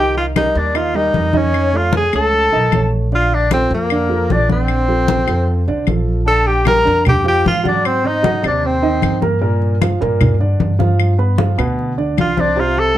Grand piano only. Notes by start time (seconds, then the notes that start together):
Already playing: D#3 D#4 D#5
0.35 G3 G4 A#4
0.74 D#3 D#4 D#5
0.95 G3 G4 A#4
1.33 D#3 D#4 D#5
1.74 A3 A4 C#5
2.13 A3 A4 C#5
2.52 D#3 D#4 D#5
2.73 A3 A4 C#5
3.12 D3 D4 D5
3.51 F3 F4 A4
3.91 D3 D4 D5
4.09 F3 F4 A4
4.49 D3 D4 D5
4.88 F3 F4 A4
5.27 F3 F4 A4
5.68 D3 D4 D5
5.87 F3 F4 A4
6.26 D3 D4 D5
6.65 G3 G4 G5
6.85 D3 D4 D5
7.24 F3 F4 F5
7.63 F#3 F#4 F#5
8.04 C4 C5 C6
8.23 F#3 F#4 F#5
8.42 C3 C4 C5
8.82 D#3 D#4 D#5
9.22 A#3 A#4 A#5
9.41 A#2 A#3 A#4
9.81 F3 F4 F5
10.01 A#2 A#3 A#4
10.40 D3 D4 D5
10.79 F3 F4 F5
11.18 B3 B4 B5
11.38 F3 F4 F5
11.58 B2 B3 B4
11.98 D3 D4 D5
12.37 C4 C5 C6
12.56 C3 C4 C5
12.95 G3